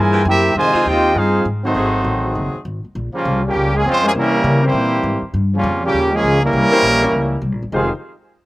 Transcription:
Already playing: G2 A#2 E3 E4 G#4 A#4 C5 G#5
0.13 E3 A#3 C4 G4
0.25 F#2 A#3 C4 E4 G4 A#4 E5
0.55 F2 C3 D#3 G#3 F4 C5 D#5 G#5
0.73 D#3 G#3 C4 F4, muted upright bass stroke
0.85 D#2 C4 D#4 F4 G4 C5 D#5 G5
1.15 G2 C4 D#4 F4 G#4 C5 F5
1.45 G#2
1.64 D#3 F#3 A3 C4 D#4 F#4 C5
1.75 G#1 F#3 A3 C4 G#4
2.04 A1
2.35 F#1
2.54 muted upright bass stroke
2.65 G#1
2.85 muted upright bass stroke
2.95 A#1
3.13 A#2 C#3 F3 G3 A#3 C#4 F4, muted upright bass stroke
3.25 C2
3.43 A#2 C#3 G3 A#3 C#4 G4
3.55 C#2
3.73 G#3 A#3 C#4 G#4
3.84 F2 G#3 C4 C#4 F4
3.88 C5
4.03 G#3 A#3 C#4 E4 G4 C5
4.07 G#4
4.14 C3 E3 G3 A#3 C#4 E4 A#4
4.44 C#3
4.62 E3 G3 A#3 C4 C#4 E4 G4 C5
4.73 A#2
5.03 G#2
5.22 muted upright bass stroke
5.34 G2
5.54 A#2 C#3 F3 G3 A#3 C#4 F4
5.63 F2
5.83 A#2 C#3 G3 A#3 C#4 G4
5.94 D#2
6.13 C#3 F3 G#3 A#3 C#4 G#4
6.24 C#2
6.42 E3 G3 A#3 C#4 E4 A#4
6.53 C2
6.71 A#3 C#4 E4 G4 C5, muted upright bass stroke
6.82 A#1
7.01 A#3 C#4 E4 G4 C#5
7.12 C#2
7.42 C2
7.52 A#1
7.62 G1
7.72 F1 F2 C3 D#3 G#3 D#4 F4 G4 G#4 C5 F5

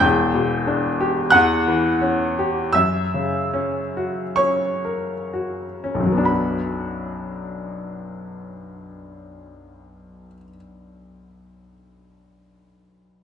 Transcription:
0.00 E1 E2 G5 G6
0.34 B2
0.67 D4
1.01 G4
1.31 E2 F#5 F#6
1.68 E3
2.02 C#4
2.39 G4
2.73 F#2 E5 E6
3.14 C#3
3.54 C#4
3.97 F#4
4.36 C#4 C#5 C#6
4.85 A#4
5.33 F#4
5.84 C#4
5.95 B1
6.00 F#2
6.06 F#3
6.12 B3
6.18 D4
6.23 F#4 B5

